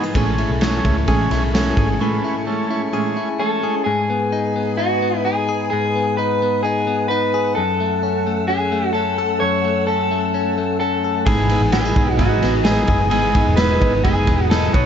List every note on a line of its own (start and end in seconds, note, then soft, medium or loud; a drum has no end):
0.00 0.14 G#2 medium
0.00 0.15 G#3 medium
0.00 0.15 B3 medium
0.00 0.20 B3 medium
0.00 0.15 D#4 medium
0.00 0.20 D#4 medium
0.00 0.15 G#4 soft
0.00 0.11 B4 medium
0.00 3.82 G#5 medium
0.00 0.11 D#6 loud
0.14 0.45 A1 loud
0.14 0.37 A2 medium
0.14 0.38 E3 loud
0.14 0.38 G#3 medium
0.14 3.82 A3 medium
0.14 2.00 A3 medium
0.14 0.51 A3 medium
0.14 0.37 C#4 loud
0.14 0.51 C#4 medium
0.14 0.36 E4 loud
0.14 0.51 G#4 medium
0.14 1.08 G#4 medium
0.14 3.82 C#6 medium
0.14 kick loud
0.14 ride medium
0.37 0.60 G#3 medium
0.37 0.61 C#4 medium
0.37 0.61 E4 medium
0.37 0.84 E4 medium
0.37 ride medium
0.50 0.79 B1 medium
0.60 0.84 E3 medium
0.60 0.85 G#3 medium
0.60 0.97 A3 loud
0.60 0.97 C#4 medium
0.60 1.54 C#4 medium
0.60 0.84 C#4 medium
0.60 0.83 E4 medium
0.60 0.97 G#4 loud
0.60 snare loud
0.60 ride medium
0.84 1.04 C#2 medium
0.84 1.07 G#3 soft
0.84 1.08 C#4 medium
0.84 1.07 E4 medium
0.84 1.30 E4 medium
0.84 kick loud
0.84 ride medium
1.07 1.27 A1 medium
1.07 1.31 A2 loud
1.07 1.31 E3 medium
1.07 1.31 G#3 medium
1.07 1.43 A3 medium
1.07 1.43 C#4 medium
1.07 1.30 C#4 loud
1.07 1.28 E4 loud
1.07 1.43 G#4 loud
1.07 1.78 G#4 medium
1.07 kick medium
1.07 ride medium
1.29 1.70 B1 medium
1.29 1.53 G#3 soft
1.29 1.54 C#4 medium
1.29 1.53 E4 medium
1.29 2.23 E4 medium
1.29 snare soft
1.29 ride medium
1.53 1.77 E3 medium
1.53 1.77 G#3 medium
1.53 1.89 A3 medium
1.53 1.89 C#4 medium
1.53 2.46 C#4 medium
1.53 1.76 C#4 medium
1.53 1.75 E4 medium
1.53 1.89 G#4 medium
1.53 snare loud
1.53 ride medium
1.76 1.97 G#1 medium
1.76 1.99 G#3 medium
1.76 1.99 C#4 medium
1.76 2.00 E4 medium
1.76 2.02 G#4 medium
1.76 kick loud
1.76 ride medium
1.99 2.23 A2 medium
1.99 2.23 E3 medium
1.99 2.24 G#3 medium
1.99 2.36 A3 medium
1.99 3.86 A3 medium
1.99 2.36 C#4 medium
1.99 2.24 C#4 loud
1.99 2.21 E4 medium
1.99 2.93 G#4 medium
1.99 2.36 B4 loud
2.23 2.46 G#3 medium
2.23 2.47 C#4 medium
2.23 2.46 E4 medium
2.23 2.69 E4 medium
2.45 2.69 E3 medium
2.45 2.70 G#3 medium
2.45 2.82 A3 medium
2.45 2.82 C#4 medium
2.45 3.39 C#4 medium
2.45 2.70 C#4 medium
2.45 2.69 E4 medium
2.45 2.82 A4 loud
2.70 2.92 G#3 soft
2.70 2.92 C#4 medium
2.70 2.93 E4 medium
2.70 3.16 E4 medium
2.92 3.15 A2 medium
2.92 3.16 E3 medium
2.92 3.16 G#3 loud
2.92 3.29 A3 medium
2.92 3.16 C#4 loud
2.92 3.29 C#4 medium
2.92 3.14 E4 loud
2.92 3.63 G#4 medium
2.92 3.29 G#4 medium
3.15 3.38 G#3 soft
3.15 3.39 C#4 medium
3.15 3.39 E4 medium
3.15 3.91 E4 medium
3.38 3.62 E3 medium
3.38 3.63 G#3 medium
3.38 3.75 A3 medium
3.38 3.91 C#4 medium
3.38 3.75 C#4 medium
3.38 3.61 C#4 medium
3.38 3.60 E4 medium
3.38 3.84 A4 medium
3.38 3.75 G#5 loud
3.61 3.87 G#3 soft
3.61 3.86 C#4 medium
3.61 3.85 E4 medium
3.61 5.48 G#4 medium
3.84 5.71 G#2 medium
3.84 4.77 G#4 medium
3.84 7.53 B4 medium
3.84 5.70 G#5 medium
3.84 7.53 D#6 medium
4.10 4.55 B3 medium
4.33 4.78 D#4 medium
4.56 5.01 B3 medium
4.77 5.25 D#4 medium
4.77 5.24 F#4 medium
5.02 5.95 B3 medium
5.25 6.17 D#4 medium
5.25 5.69 G#4 medium
5.49 7.33 G#4 medium
5.70 7.57 G#2 medium
5.70 6.17 G#4 loud
5.70 11.22 F#5 medium
5.96 6.41 B3 medium
6.17 6.64 D#4 medium
6.17 6.60 B4 medium
6.42 6.86 B3 medium
6.63 7.10 D#4 medium
6.63 7.08 G#4 medium
6.87 7.61 B3 medium
7.08 7.61 D#4 medium
7.08 7.52 B4 loud
7.34 7.61 G#4 medium
7.55 9.40 F#2 medium
7.55 11.24 A3 medium
7.55 8.47 A4 loud
7.55 11.23 E6 medium
7.80 8.25 A3 medium
8.03 8.48 C#4 medium
8.27 8.71 A3 medium
8.48 8.93 C#4 medium
8.48 8.92 G#4 loud
8.72 9.63 A3 medium
8.93 9.87 C#4 medium
8.93 9.39 A4 loud
9.18 11.03 A4 medium
9.40 11.27 F#2 medium
9.40 9.84 C#5 loud
9.65 10.10 A3 medium
9.87 10.33 C#4 medium
9.87 10.79 A4 loud
10.11 10.57 A3 medium
10.34 10.80 C#4 medium
10.58 11.32 A3 medium
10.80 11.31 C#4 medium
10.80 11.25 A4 loud
11.04 11.32 A4 medium
11.25 11.56 G#1 loud
11.25 11.49 G#2 medium
11.25 13.11 G#2 medium
11.25 11.50 E3 medium
11.25 11.50 G#3 medium
11.25 11.62 B3 medium
11.25 11.50 B3 medium
11.25 11.62 D#4 medium
11.25 11.48 D#4 medium
11.25 11.62 E4 medium
11.25 14.70 G#4 medium
11.25 11.71 G#4 loud
11.25 11.62 G#4 medium
11.25 14.70 D#5 medium
11.25 14.86 D#6 medium
11.25 kick loud
11.25 ride medium
11.49 11.72 G#3 soft
11.49 11.97 B3 medium
11.49 11.72 B3 soft
11.49 11.73 D#4 medium
11.49 ride medium
11.61 11.91 A1 medium
11.71 11.95 E3 medium
11.71 11.95 G#3 medium
11.71 12.09 B3 medium
11.71 11.95 B3 medium
11.71 11.85 C#4 medium
11.71 12.08 D#4 medium
11.71 11.93 D#4 medium
11.71 12.08 E4 medium
11.71 12.20 G#4 medium
11.71 12.08 G#4 medium
11.71 snare loud
11.71 ride medium
11.85 12.19 D#4 medium
11.94 12.21 B1 medium
11.94 12.18 G#3 soft
11.94 12.18 B3 medium
11.94 12.43 B3 medium
11.94 12.18 D#4 medium
11.94 kick loud
11.94 ride medium
12.17 12.39 G#1 medium
12.17 12.41 G#2 medium
12.17 12.42 E3 medium
12.17 12.41 G#3 medium
12.17 12.40 B3 medium
12.17 12.55 B3 medium
12.17 12.55 D#4 medium
12.17 12.38 D#4 loud
12.17 12.66 D#4 medium
12.17 12.55 E4 medium
12.17 12.61 F#4 medium
12.17 12.55 G#4 medium
12.17 kick loud
12.17 ride medium
12.39 12.82 A1 medium
12.39 12.64 G#3 soft
12.39 12.64 B3 medium
12.39 12.64 D#4 medium
12.39 snare soft
12.39 ride medium
12.44 13.35 B3 medium
12.64 12.88 E3 medium
12.64 12.88 G#3 medium
12.64 12.87 B3 medium
12.64 13.01 B3 medium
12.64 13.01 D#4 medium
12.64 12.86 D#4 medium
12.64 13.58 D#4 medium
12.64 13.01 E4 medium
12.64 13.09 G#4 medium
12.64 13.01 G#4 medium
12.64 snare loud
12.64 ride medium
12.87 13.12 F#1 loud
12.87 13.11 G#3 soft
12.87 13.11 B3 medium
12.87 13.11 D#4 medium
12.87 14.75 G#4 medium
12.87 kick medium
12.87 ride medium
13.10 13.41 G#1 loud
13.10 13.35 G#2 medium
13.10 14.74 G#2 medium
13.10 13.35 E3 medium
13.10 13.35 G#3 medium
13.10 13.47 B3 medium
13.10 13.35 B3 medium
13.10 13.47 D#4 medium
13.10 13.33 D#4 medium
13.10 13.47 E4 medium
13.10 13.54 G#4 medium
13.10 13.47 G#4 medium
13.10 ride medium
13.35 13.57 G#3 soft
13.35 13.82 B3 medium
13.35 13.58 B3 medium
13.35 13.58 D#4 medium
13.35 kick medium
13.35 ride medium
13.47 13.76 E1 medium
13.56 13.81 E3 medium
13.56 13.81 G#3 medium
13.56 13.94 B3 medium
13.56 13.81 B3 medium
13.56 13.94 D#4 medium
13.56 14.05 D#4 medium
13.56 13.79 D#4 medium
13.56 13.94 E4 medium
13.56 13.94 G#4 medium
13.56 14.03 B4 medium
13.56 snare loud
13.56 ride medium
13.80 14.01 G#1 loud
13.80 14.04 G#3 soft
13.80 14.28 B3 medium
13.80 14.04 B3 soft
13.80 14.04 D#4 medium
13.80 kick loud
13.80 ride medium
14.04 14.24 F#1 loud
14.04 14.28 G#2 medium
14.04 14.28 E3 medium
14.04 14.28 G#3 loud
14.04 14.40 B3 medium
14.04 14.27 B3 loud
14.04 14.40 D#4 medium
14.04 14.51 D#4 medium
14.04 14.25 D#4 medium
14.04 14.40 E4 medium
14.04 14.50 G#4 medium
14.04 14.40 G#4 medium
14.04 kick loud
14.04 ride medium
14.26 14.67 E1 medium
14.26 14.49 G#3 soft
14.26 14.50 B3 medium
14.26 14.86 B3 medium
14.26 14.50 D#4 medium
14.26 kick loud
14.26 ride medium
14.50 14.73 E3 medium
14.50 14.74 G#3 medium
14.50 14.72 B3 medium
14.50 14.74 B3 medium
14.50 14.72 D#4 medium
14.50 14.86 D#4 medium
14.50 14.72 D#4 medium
14.50 14.74 E4 medium
14.50 14.74 G#4 medium
14.50 14.74 A4 medium
14.50 snare loud
14.50 ride medium
14.73 14.86 B1 loud
14.73 14.86 B2 medium
14.73 14.86 F#3 soft
14.73 14.86 A3 medium
14.73 14.86 B3 medium
14.73 14.86 D#4 medium
14.73 14.86 F#4 medium
14.73 14.86 A4 medium
14.73 14.86 B4 medium
14.73 14.86 C#5 medium
14.73 14.86 F#5 medium
14.73 kick loud
14.73 ride medium